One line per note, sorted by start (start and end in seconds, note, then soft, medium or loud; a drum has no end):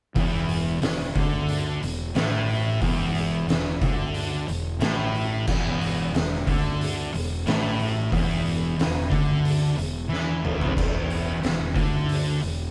0.15 0.78 E1 medium
0.15 0.80 E2 loud
0.15 kick loud
0.15 open hi-hat medium
0.49 open hi-hat medium
0.81 1.13 E1 medium
0.81 1.08 E2 medium
0.81 snare loud
0.81 open hi-hat medium
1.15 1.78 D2 loud
1.15 1.81 D3 loud
1.15 kick loud
1.15 open hi-hat medium
1.49 open hi-hat medium
1.82 2.13 E1 medium
1.82 2.09 E2 medium
1.82 open hi-hat medium
2.15 2.77 A1 loud
2.15 2.81 A2 loud
2.15 snare loud
2.15 open hi-hat medium
2.49 open hi-hat medium
2.81 3.44 E1 loud
2.81 3.47 E2 loud
2.81 kick medium
2.81 open hi-hat medium
3.15 open hi-hat medium
3.47 3.78 E1 medium
3.47 3.75 E2 medium
3.47 snare loud
3.47 open hi-hat medium
3.81 4.44 D2 medium
3.81 4.47 D3 loud
3.81 kick loud
3.81 open hi-hat medium
4.14 open hi-hat medium
4.47 4.79 E1 medium
4.47 4.74 E2 medium
4.47 open hi-hat medium
4.80 5.43 A1 loud
4.80 5.46 A2 loud
4.80 snare loud
4.80 open hi-hat medium
5.14 open hi-hat soft
5.47 6.10 E1 medium
5.47 6.12 E2 loud
5.47 kick loud
5.47 crash medium
5.81 open hi-hat medium
6.14 6.44 E1 medium
6.14 6.40 E2 medium
6.14 snare loud
6.14 open hi-hat medium
6.46 7.09 D2 loud
6.46 7.12 D3 loud
6.46 kick loud
6.46 open hi-hat medium
6.81 open hi-hat medium
7.13 7.44 E1 medium
7.13 7.39 E2 medium
7.13 open hi-hat medium
7.46 8.08 A1 medium
7.46 8.11 A2 loud
7.46 snare loud
7.46 open hi-hat medium
7.79 open hi-hat medium
8.12 8.74 E1 loud
8.12 8.77 E2 loud
8.12 kick loud
8.12 open hi-hat medium
8.46 open hi-hat medium
8.77 9.08 E1 medium
8.77 9.05 E2 medium
8.77 snare loud
8.77 open hi-hat medium
9.10 9.73 D2 loud
9.10 9.76 D3 medium
9.10 kick loud
9.10 open hi-hat medium
9.45 open hi-hat medium
9.76 10.08 E1 medium
9.76 10.03 E2 medium
9.76 open hi-hat medium
10.09 10.41 E2 medium
10.09 10.42 E3 loud
10.13 snare medium
10.42 10.73 E1 medium
10.42 10.74 E2 loud
10.42 mid tom medium
10.61 floor tom loud
10.75 11.39 E1 medium
10.75 11.41 E2 loud
10.75 kick loud
10.75 crash medium
10.75 splash medium
11.10 open hi-hat medium
11.42 11.73 E1 medium
11.42 11.69 E2 medium
11.42 snare loud
11.42 open hi-hat medium
11.74 12.38 D2 loud
11.74 12.40 D3 loud
11.74 kick loud
11.74 open hi-hat medium
12.09 open hi-hat medium
12.41 12.71 E1 medium
12.41 12.68 E2 medium
12.41 open hi-hat medium